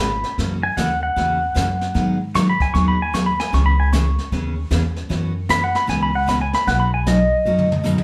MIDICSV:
0, 0, Header, 1, 5, 480
1, 0, Start_track
1, 0, Tempo, 393185
1, 468, Time_signature, 4, 2, 24, 8
1, 9812, End_track
2, 0, Start_track
2, 0, Title_t, "Pedal steel guitar"
2, 0, Program_c, 0, 26
2, 0, Note_on_c, 0, 83, 107
2, 449, Note_off_c, 0, 83, 0
2, 774, Note_on_c, 0, 80, 97
2, 939, Note_on_c, 0, 78, 87
2, 942, Note_off_c, 0, 80, 0
2, 1243, Note_off_c, 0, 78, 0
2, 1256, Note_on_c, 0, 78, 107
2, 2655, Note_off_c, 0, 78, 0
2, 2875, Note_on_c, 0, 85, 105
2, 3028, Note_off_c, 0, 85, 0
2, 3046, Note_on_c, 0, 83, 83
2, 3194, Note_off_c, 0, 83, 0
2, 3196, Note_on_c, 0, 80, 95
2, 3342, Note_on_c, 0, 85, 104
2, 3348, Note_off_c, 0, 80, 0
2, 3501, Note_off_c, 0, 85, 0
2, 3515, Note_on_c, 0, 83, 84
2, 3668, Note_off_c, 0, 83, 0
2, 3691, Note_on_c, 0, 80, 94
2, 3833, Note_on_c, 0, 85, 87
2, 3836, Note_off_c, 0, 80, 0
2, 3978, Note_off_c, 0, 85, 0
2, 3983, Note_on_c, 0, 83, 81
2, 4142, Note_off_c, 0, 83, 0
2, 4149, Note_on_c, 0, 80, 91
2, 4305, Note_off_c, 0, 80, 0
2, 4324, Note_on_c, 0, 85, 99
2, 4460, Note_off_c, 0, 85, 0
2, 4465, Note_on_c, 0, 83, 89
2, 4623, Note_off_c, 0, 83, 0
2, 4635, Note_on_c, 0, 80, 92
2, 4788, Note_off_c, 0, 80, 0
2, 4793, Note_on_c, 0, 85, 93
2, 5722, Note_off_c, 0, 85, 0
2, 6720, Note_on_c, 0, 83, 100
2, 6869, Note_off_c, 0, 83, 0
2, 6883, Note_on_c, 0, 78, 87
2, 7031, Note_off_c, 0, 78, 0
2, 7032, Note_on_c, 0, 83, 96
2, 7185, Note_off_c, 0, 83, 0
2, 7197, Note_on_c, 0, 80, 93
2, 7348, Note_off_c, 0, 80, 0
2, 7356, Note_on_c, 0, 83, 91
2, 7507, Note_off_c, 0, 83, 0
2, 7513, Note_on_c, 0, 78, 93
2, 7665, Note_off_c, 0, 78, 0
2, 7675, Note_on_c, 0, 83, 92
2, 7825, Note_off_c, 0, 83, 0
2, 7830, Note_on_c, 0, 80, 82
2, 7984, Note_off_c, 0, 80, 0
2, 7991, Note_on_c, 0, 83, 96
2, 8144, Note_off_c, 0, 83, 0
2, 8150, Note_on_c, 0, 78, 94
2, 8298, Note_on_c, 0, 83, 91
2, 8303, Note_off_c, 0, 78, 0
2, 8457, Note_off_c, 0, 83, 0
2, 8472, Note_on_c, 0, 80, 90
2, 8624, Note_off_c, 0, 80, 0
2, 8636, Note_on_c, 0, 75, 92
2, 9812, Note_off_c, 0, 75, 0
2, 9812, End_track
3, 0, Start_track
3, 0, Title_t, "Steel-string acoustic guitar"
3, 0, Program_c, 1, 25
3, 0, Note_on_c, 1, 49, 73
3, 0, Note_on_c, 1, 56, 82
3, 0, Note_on_c, 1, 59, 84
3, 0, Note_on_c, 1, 65, 85
3, 0, Note_on_c, 1, 68, 80
3, 124, Note_off_c, 1, 49, 0
3, 126, Note_off_c, 1, 56, 0
3, 129, Note_off_c, 1, 65, 0
3, 130, Note_off_c, 1, 68, 0
3, 131, Note_off_c, 1, 59, 0
3, 475, Note_on_c, 1, 49, 61
3, 479, Note_on_c, 1, 52, 58
3, 483, Note_on_c, 1, 58, 64
3, 484, Note_on_c, 1, 61, 64
3, 488, Note_on_c, 1, 66, 67
3, 739, Note_off_c, 1, 49, 0
3, 741, Note_off_c, 1, 52, 0
3, 743, Note_off_c, 1, 58, 0
3, 743, Note_off_c, 1, 61, 0
3, 745, Note_off_c, 1, 66, 0
3, 943, Note_on_c, 1, 49, 81
3, 948, Note_on_c, 1, 52, 79
3, 953, Note_on_c, 1, 58, 75
3, 958, Note_on_c, 1, 61, 73
3, 959, Note_on_c, 1, 66, 88
3, 1087, Note_off_c, 1, 49, 0
3, 1090, Note_off_c, 1, 52, 0
3, 1092, Note_off_c, 1, 58, 0
3, 1095, Note_off_c, 1, 61, 0
3, 1095, Note_off_c, 1, 66, 0
3, 1418, Note_on_c, 1, 49, 63
3, 1422, Note_on_c, 1, 52, 66
3, 1427, Note_on_c, 1, 58, 60
3, 1429, Note_on_c, 1, 61, 63
3, 1431, Note_on_c, 1, 66, 66
3, 1691, Note_off_c, 1, 49, 0
3, 1693, Note_off_c, 1, 52, 0
3, 1695, Note_off_c, 1, 58, 0
3, 1696, Note_off_c, 1, 61, 0
3, 1698, Note_off_c, 1, 66, 0
3, 1886, Note_on_c, 1, 49, 67
3, 1893, Note_on_c, 1, 52, 72
3, 1897, Note_on_c, 1, 58, 73
3, 1902, Note_on_c, 1, 66, 88
3, 1904, Note_on_c, 1, 61, 86
3, 2039, Note_off_c, 1, 49, 0
3, 2043, Note_off_c, 1, 52, 0
3, 2044, Note_off_c, 1, 58, 0
3, 2047, Note_off_c, 1, 66, 0
3, 2048, Note_off_c, 1, 61, 0
3, 2373, Note_on_c, 1, 51, 62
3, 2377, Note_on_c, 1, 54, 61
3, 2381, Note_on_c, 1, 63, 65
3, 2382, Note_on_c, 1, 59, 73
3, 2388, Note_on_c, 1, 68, 59
3, 2649, Note_off_c, 1, 51, 0
3, 2651, Note_off_c, 1, 54, 0
3, 2653, Note_off_c, 1, 59, 0
3, 2653, Note_off_c, 1, 63, 0
3, 2656, Note_off_c, 1, 68, 0
3, 2863, Note_on_c, 1, 51, 82
3, 2865, Note_on_c, 1, 54, 81
3, 2868, Note_on_c, 1, 59, 76
3, 2874, Note_on_c, 1, 63, 81
3, 2877, Note_on_c, 1, 68, 86
3, 3008, Note_off_c, 1, 51, 0
3, 3009, Note_off_c, 1, 54, 0
3, 3010, Note_off_c, 1, 59, 0
3, 3014, Note_off_c, 1, 63, 0
3, 3015, Note_off_c, 1, 68, 0
3, 3350, Note_on_c, 1, 51, 62
3, 3353, Note_on_c, 1, 54, 66
3, 3355, Note_on_c, 1, 59, 67
3, 3361, Note_on_c, 1, 63, 69
3, 3362, Note_on_c, 1, 68, 69
3, 3617, Note_off_c, 1, 51, 0
3, 3619, Note_off_c, 1, 54, 0
3, 3620, Note_off_c, 1, 59, 0
3, 3623, Note_off_c, 1, 63, 0
3, 3623, Note_off_c, 1, 68, 0
3, 3826, Note_on_c, 1, 51, 72
3, 3829, Note_on_c, 1, 54, 70
3, 3836, Note_on_c, 1, 63, 79
3, 3836, Note_on_c, 1, 68, 89
3, 3838, Note_on_c, 1, 59, 73
3, 3969, Note_off_c, 1, 51, 0
3, 3971, Note_off_c, 1, 54, 0
3, 3974, Note_off_c, 1, 63, 0
3, 3975, Note_off_c, 1, 68, 0
3, 3976, Note_off_c, 1, 59, 0
3, 4304, Note_on_c, 1, 49, 66
3, 4309, Note_on_c, 1, 52, 60
3, 4312, Note_on_c, 1, 59, 71
3, 4313, Note_on_c, 1, 61, 61
3, 4317, Note_on_c, 1, 68, 69
3, 4574, Note_off_c, 1, 49, 0
3, 4577, Note_off_c, 1, 52, 0
3, 4578, Note_off_c, 1, 59, 0
3, 4578, Note_off_c, 1, 61, 0
3, 4581, Note_off_c, 1, 68, 0
3, 4792, Note_on_c, 1, 49, 78
3, 4796, Note_on_c, 1, 59, 80
3, 4798, Note_on_c, 1, 52, 82
3, 4805, Note_on_c, 1, 61, 80
3, 4807, Note_on_c, 1, 68, 96
3, 4932, Note_off_c, 1, 49, 0
3, 4934, Note_off_c, 1, 59, 0
3, 4935, Note_off_c, 1, 52, 0
3, 4939, Note_off_c, 1, 61, 0
3, 4940, Note_off_c, 1, 68, 0
3, 5276, Note_on_c, 1, 59, 67
3, 5277, Note_on_c, 1, 49, 69
3, 5282, Note_on_c, 1, 52, 61
3, 5288, Note_on_c, 1, 61, 63
3, 5288, Note_on_c, 1, 68, 70
3, 5540, Note_off_c, 1, 49, 0
3, 5540, Note_off_c, 1, 59, 0
3, 5543, Note_off_c, 1, 52, 0
3, 5546, Note_off_c, 1, 61, 0
3, 5546, Note_off_c, 1, 68, 0
3, 5745, Note_on_c, 1, 49, 75
3, 5746, Note_on_c, 1, 52, 78
3, 5750, Note_on_c, 1, 61, 81
3, 5752, Note_on_c, 1, 68, 80
3, 5754, Note_on_c, 1, 59, 84
3, 5889, Note_off_c, 1, 49, 0
3, 5889, Note_off_c, 1, 52, 0
3, 5891, Note_off_c, 1, 61, 0
3, 5892, Note_off_c, 1, 68, 0
3, 5893, Note_off_c, 1, 59, 0
3, 6215, Note_on_c, 1, 47, 63
3, 6221, Note_on_c, 1, 52, 70
3, 6223, Note_on_c, 1, 59, 73
3, 6224, Note_on_c, 1, 61, 65
3, 6232, Note_on_c, 1, 66, 71
3, 6489, Note_off_c, 1, 47, 0
3, 6492, Note_off_c, 1, 52, 0
3, 6493, Note_off_c, 1, 59, 0
3, 6494, Note_off_c, 1, 61, 0
3, 6498, Note_off_c, 1, 66, 0
3, 6705, Note_on_c, 1, 47, 69
3, 6707, Note_on_c, 1, 52, 83
3, 6708, Note_on_c, 1, 59, 86
3, 6712, Note_on_c, 1, 61, 91
3, 6716, Note_on_c, 1, 66, 84
3, 6848, Note_off_c, 1, 47, 0
3, 6849, Note_off_c, 1, 52, 0
3, 6850, Note_off_c, 1, 59, 0
3, 6852, Note_off_c, 1, 61, 0
3, 6853, Note_off_c, 1, 66, 0
3, 7168, Note_on_c, 1, 47, 65
3, 7171, Note_on_c, 1, 52, 73
3, 7172, Note_on_c, 1, 59, 69
3, 7183, Note_on_c, 1, 66, 71
3, 7185, Note_on_c, 1, 61, 76
3, 7445, Note_off_c, 1, 47, 0
3, 7446, Note_off_c, 1, 52, 0
3, 7447, Note_off_c, 1, 59, 0
3, 7452, Note_off_c, 1, 66, 0
3, 7453, Note_off_c, 1, 61, 0
3, 7652, Note_on_c, 1, 47, 73
3, 7661, Note_on_c, 1, 52, 75
3, 7662, Note_on_c, 1, 59, 86
3, 7671, Note_on_c, 1, 66, 79
3, 7672, Note_on_c, 1, 61, 88
3, 7801, Note_off_c, 1, 47, 0
3, 7805, Note_off_c, 1, 52, 0
3, 7806, Note_off_c, 1, 59, 0
3, 7810, Note_off_c, 1, 66, 0
3, 7811, Note_off_c, 1, 61, 0
3, 8145, Note_on_c, 1, 47, 58
3, 8151, Note_on_c, 1, 54, 66
3, 8151, Note_on_c, 1, 58, 62
3, 8156, Note_on_c, 1, 63, 65
3, 8159, Note_on_c, 1, 66, 78
3, 8413, Note_off_c, 1, 47, 0
3, 8415, Note_off_c, 1, 54, 0
3, 8416, Note_off_c, 1, 58, 0
3, 8418, Note_off_c, 1, 63, 0
3, 8419, Note_off_c, 1, 66, 0
3, 8624, Note_on_c, 1, 47, 74
3, 8629, Note_on_c, 1, 58, 86
3, 8631, Note_on_c, 1, 54, 80
3, 8633, Note_on_c, 1, 63, 94
3, 8638, Note_on_c, 1, 66, 77
3, 8766, Note_off_c, 1, 47, 0
3, 8769, Note_off_c, 1, 58, 0
3, 8770, Note_off_c, 1, 54, 0
3, 8771, Note_off_c, 1, 63, 0
3, 8774, Note_off_c, 1, 66, 0
3, 9109, Note_on_c, 1, 54, 72
3, 9110, Note_on_c, 1, 47, 64
3, 9115, Note_on_c, 1, 58, 71
3, 9119, Note_on_c, 1, 63, 67
3, 9120, Note_on_c, 1, 66, 76
3, 9374, Note_off_c, 1, 54, 0
3, 9375, Note_off_c, 1, 47, 0
3, 9377, Note_off_c, 1, 58, 0
3, 9379, Note_off_c, 1, 63, 0
3, 9380, Note_off_c, 1, 66, 0
3, 9565, Note_on_c, 1, 47, 80
3, 9572, Note_on_c, 1, 54, 81
3, 9575, Note_on_c, 1, 58, 81
3, 9576, Note_on_c, 1, 63, 86
3, 9581, Note_on_c, 1, 66, 84
3, 9716, Note_off_c, 1, 47, 0
3, 9720, Note_off_c, 1, 54, 0
3, 9721, Note_off_c, 1, 58, 0
3, 9722, Note_off_c, 1, 63, 0
3, 9724, Note_off_c, 1, 66, 0
3, 9812, End_track
4, 0, Start_track
4, 0, Title_t, "Upright bass"
4, 0, Program_c, 2, 32
4, 0, Note_on_c, 2, 32, 81
4, 272, Note_off_c, 2, 32, 0
4, 462, Note_on_c, 2, 42, 90
4, 849, Note_off_c, 2, 42, 0
4, 944, Note_on_c, 2, 39, 76
4, 1354, Note_off_c, 2, 39, 0
4, 1423, Note_on_c, 2, 40, 82
4, 1834, Note_off_c, 2, 40, 0
4, 1905, Note_on_c, 2, 42, 84
4, 2315, Note_off_c, 2, 42, 0
4, 2383, Note_on_c, 2, 44, 80
4, 3154, Note_off_c, 2, 44, 0
4, 3350, Note_on_c, 2, 39, 76
4, 4118, Note_off_c, 2, 39, 0
4, 4311, Note_on_c, 2, 37, 88
4, 5078, Note_off_c, 2, 37, 0
4, 5276, Note_on_c, 2, 39, 83
4, 5681, Note_off_c, 2, 39, 0
4, 5747, Note_on_c, 2, 40, 84
4, 6156, Note_off_c, 2, 40, 0
4, 6231, Note_on_c, 2, 42, 91
4, 6998, Note_off_c, 2, 42, 0
4, 7192, Note_on_c, 2, 37, 88
4, 7957, Note_off_c, 2, 37, 0
4, 8145, Note_on_c, 2, 35, 92
4, 8913, Note_off_c, 2, 35, 0
4, 9101, Note_on_c, 2, 42, 88
4, 9812, Note_off_c, 2, 42, 0
4, 9812, End_track
5, 0, Start_track
5, 0, Title_t, "Drums"
5, 287, Note_on_c, 9, 38, 43
5, 410, Note_off_c, 9, 38, 0
5, 464, Note_on_c, 9, 36, 20
5, 470, Note_on_c, 9, 25, 44
5, 470, Note_on_c, 9, 38, 49
5, 586, Note_off_c, 9, 36, 0
5, 592, Note_off_c, 9, 38, 0
5, 943, Note_on_c, 9, 36, 21
5, 943, Note_on_c, 9, 38, 73
5, 943, Note_on_c, 9, 44, 52
5, 1065, Note_off_c, 9, 36, 0
5, 1066, Note_off_c, 9, 38, 0
5, 1066, Note_off_c, 9, 44, 0
5, 1424, Note_on_c, 9, 36, 24
5, 1431, Note_off_c, 9, 25, 0
5, 1431, Note_on_c, 9, 25, 46
5, 1431, Note_on_c, 9, 38, 47
5, 1546, Note_off_c, 9, 36, 0
5, 1553, Note_off_c, 9, 38, 0
5, 1904, Note_on_c, 9, 38, 71
5, 1904, Note_on_c, 9, 44, 54
5, 1905, Note_on_c, 9, 36, 24
5, 2026, Note_off_c, 9, 38, 0
5, 2026, Note_off_c, 9, 44, 0
5, 2027, Note_off_c, 9, 36, 0
5, 2212, Note_on_c, 9, 38, 41
5, 2334, Note_off_c, 9, 38, 0
5, 2380, Note_off_c, 9, 25, 0
5, 2380, Note_on_c, 9, 25, 46
5, 2380, Note_on_c, 9, 38, 43
5, 2384, Note_on_c, 9, 36, 29
5, 2502, Note_off_c, 9, 38, 0
5, 2506, Note_off_c, 9, 36, 0
5, 2868, Note_on_c, 9, 36, 20
5, 2870, Note_on_c, 9, 38, 78
5, 2870, Note_on_c, 9, 44, 54
5, 2990, Note_off_c, 9, 36, 0
5, 2992, Note_off_c, 9, 38, 0
5, 2992, Note_off_c, 9, 44, 0
5, 3178, Note_on_c, 9, 36, 56
5, 3180, Note_on_c, 9, 38, 38
5, 3300, Note_off_c, 9, 36, 0
5, 3302, Note_off_c, 9, 38, 0
5, 3352, Note_on_c, 9, 36, 24
5, 3355, Note_off_c, 9, 25, 0
5, 3355, Note_on_c, 9, 25, 41
5, 3355, Note_on_c, 9, 38, 41
5, 3474, Note_off_c, 9, 36, 0
5, 3477, Note_off_c, 9, 38, 0
5, 3831, Note_on_c, 9, 36, 20
5, 3835, Note_on_c, 9, 38, 70
5, 3835, Note_on_c, 9, 44, 60
5, 3953, Note_off_c, 9, 36, 0
5, 3957, Note_off_c, 9, 38, 0
5, 3957, Note_off_c, 9, 44, 0
5, 4145, Note_on_c, 9, 38, 45
5, 4267, Note_off_c, 9, 38, 0
5, 4312, Note_on_c, 9, 36, 20
5, 4318, Note_off_c, 9, 25, 0
5, 4318, Note_on_c, 9, 25, 46
5, 4318, Note_on_c, 9, 38, 52
5, 4434, Note_off_c, 9, 36, 0
5, 4440, Note_off_c, 9, 38, 0
5, 4793, Note_on_c, 9, 36, 19
5, 4799, Note_on_c, 9, 38, 77
5, 4799, Note_on_c, 9, 44, 63
5, 4915, Note_off_c, 9, 36, 0
5, 4921, Note_off_c, 9, 38, 0
5, 4921, Note_off_c, 9, 44, 0
5, 5109, Note_on_c, 9, 38, 41
5, 5231, Note_off_c, 9, 38, 0
5, 5272, Note_on_c, 9, 36, 26
5, 5281, Note_off_c, 9, 25, 0
5, 5281, Note_on_c, 9, 25, 43
5, 5281, Note_on_c, 9, 38, 41
5, 5394, Note_off_c, 9, 36, 0
5, 5403, Note_off_c, 9, 38, 0
5, 5750, Note_on_c, 9, 36, 21
5, 5750, Note_on_c, 9, 38, 67
5, 5750, Note_on_c, 9, 44, 51
5, 5872, Note_off_c, 9, 36, 0
5, 5872, Note_off_c, 9, 38, 0
5, 5872, Note_off_c, 9, 44, 0
5, 6059, Note_on_c, 9, 38, 42
5, 6181, Note_off_c, 9, 38, 0
5, 6229, Note_on_c, 9, 36, 23
5, 6234, Note_off_c, 9, 25, 0
5, 6234, Note_on_c, 9, 25, 47
5, 6234, Note_on_c, 9, 38, 49
5, 6351, Note_off_c, 9, 36, 0
5, 6356, Note_off_c, 9, 38, 0
5, 6706, Note_on_c, 9, 36, 25
5, 6706, Note_on_c, 9, 38, 74
5, 6706, Note_on_c, 9, 44, 63
5, 6828, Note_off_c, 9, 36, 0
5, 6828, Note_off_c, 9, 38, 0
5, 6828, Note_off_c, 9, 44, 0
5, 7018, Note_on_c, 9, 38, 44
5, 7140, Note_off_c, 9, 38, 0
5, 7187, Note_off_c, 9, 25, 0
5, 7187, Note_on_c, 9, 25, 55
5, 7187, Note_on_c, 9, 36, 19
5, 7187, Note_on_c, 9, 38, 49
5, 7309, Note_off_c, 9, 38, 0
5, 7310, Note_off_c, 9, 36, 0
5, 7668, Note_on_c, 9, 36, 23
5, 7674, Note_on_c, 9, 38, 69
5, 7674, Note_on_c, 9, 44, 51
5, 7790, Note_off_c, 9, 36, 0
5, 7796, Note_off_c, 9, 38, 0
5, 7796, Note_off_c, 9, 44, 0
5, 7976, Note_on_c, 9, 38, 54
5, 8098, Note_off_c, 9, 38, 0
5, 8146, Note_on_c, 9, 36, 26
5, 8151, Note_off_c, 9, 25, 0
5, 8151, Note_on_c, 9, 25, 51
5, 8151, Note_on_c, 9, 38, 48
5, 8268, Note_off_c, 9, 36, 0
5, 8273, Note_off_c, 9, 38, 0
5, 8625, Note_on_c, 9, 36, 19
5, 8627, Note_on_c, 9, 38, 76
5, 8627, Note_on_c, 9, 44, 51
5, 8747, Note_off_c, 9, 36, 0
5, 8749, Note_off_c, 9, 38, 0
5, 8749, Note_off_c, 9, 44, 0
5, 9260, Note_on_c, 9, 47, 61
5, 9382, Note_off_c, 9, 47, 0
5, 9422, Note_on_c, 9, 47, 80
5, 9544, Note_off_c, 9, 47, 0
5, 9585, Note_on_c, 9, 44, 57
5, 9585, Note_on_c, 9, 47, 67
5, 9707, Note_off_c, 9, 44, 0
5, 9707, Note_off_c, 9, 47, 0
5, 9743, Note_on_c, 9, 47, 78
5, 9812, Note_off_c, 9, 25, 0
5, 9812, Note_off_c, 9, 47, 0
5, 9812, End_track
0, 0, End_of_file